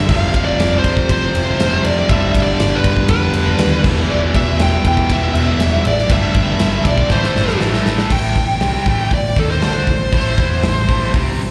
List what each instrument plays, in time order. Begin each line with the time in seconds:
Already playing: lead electric guitar E5
0.08 picked electric bass F1, distorted electric guitar F2 C3 F3, lead electric guitar F5, kick, crash
0.34 picked electric bass F1, kick, ride
0.45 lead electric guitar D5
0.58 picked electric bass F1, snare, ride
0.78 lead electric guitar C5
0.84 picked electric bass F1, kick, ride
0.97 kick
1.09 picked electric bass F1, lead electric guitar C5, kick, ride
1.33 picked electric bass F1, distorted electric guitar F2 C3 F3, ride
1.58 picked electric bass F1, distorted electric guitar F2 C3 F3, snare, ride
1.85 picked electric bass F2, lead electric guitar D5, ride
2.08 picked electric bass G1, distorted electric guitar G2 D3 G3, lead electric guitar E5, kick, ride
2.34 picked electric bass G1, kick, ride
2.43 lead electric guitar D5
2.60 picked electric bass G1, snare, ride
2.75 lead electric guitar B4
2.84 picked electric bass G1, kick, ride
2.97 kick
3.08 picked electric bass F2, lead electric guitar B4, kick, ride
3.33 picked electric bass F1, distorted electric guitar G2 D3 G3, ride
3.58 picked electric bass D#2, distorted electric guitar G2 D3 G3, snare, ride
3.83 picked electric bass E1, distorted electric guitar E2 B2 E3, kick, crash
4.09 picked electric bass E1, lead electric guitar D5
4.34 picked electric bass E1, lead electric guitar E5, kick, ride
4.59 picked electric bass E1, lead electric guitar G5, snare, ride
4.85 picked electric bass E1, lead electric guitar G5, kick, ride
4.97 kick
5.09 picked electric bass E1, distorted electric guitar E2 B2 E3, lead electric guitar E5, kick, ride
5.33 picked electric bass E1, distorted electric guitar B2 E3, ride
5.37 distorted electric guitar E2
5.59 picked electric bass E1, snare, ride
5.85 picked electric bass A1, lead electric guitar D5, ride
5.98 snare
6.09 picked electric bass G1, distorted electric guitar G2 D3 G3, lead electric guitar E5, kick, ride
6.34 picked electric bass G1, kick, ride
6.59 picked electric bass G1, snare, ride
6.85 picked electric bass B1, lead electric guitar D5, kick, ride
6.98 kick
7.09 picked electric bass A1, distorted electric guitar A2 E3 A3, lead electric guitar C5, kick, snare
7.24 snare
7.35 picked electric bass G1, snare
7.48 snare
7.61 picked electric bass A1, snare
7.74 snare
7.86 picked electric bass A1, snare
7.98 snare
8.10 picked electric bass A1, distorted electric guitar A2 E3 A3, lead electric guitar G5, kick, crash
8.36 picked electric bass A1, distorted electric guitar A2 E3, kick, open hi-hat
8.60 picked electric bass C2, distorted electric guitar C3 G3 C4, snare, open hi-hat
8.86 picked electric bass A1, distorted electric guitar A2 E3 A3, kick, open hi-hat
9.11 picked electric bass A1, distorted electric guitar A2 E3, lead electric guitar D5, kick, open hi-hat
9.36 picked electric bass D#2, distorted electric guitar D#3 A#3 D#4, lead electric guitar A4, kick, open hi-hat
9.51 lead electric guitar C5
9.62 picked electric bass D2, distorted electric guitar D3 A3 D4, lead electric guitar C5, snare, open hi-hat
9.87 picked electric bass A1, distorted electric guitar A2 E3, kick, open hi-hat
10.13 picked electric bass A1, distorted electric guitar A2 E3 A3, kick, open hi-hat
10.38 picked electric bass E2, distorted electric guitar E3 B3 E4, kick, open hi-hat
10.63 picked electric bass A1, distorted electric guitar A2 E3, snare, open hi-hat
10.89 picked electric bass A1, distorted electric guitar A2 E3 A3, kick, open hi-hat
11.14 picked electric bass C2, distorted electric guitar C3 G3 C4, kick, open hi-hat
11.39 open hi-hat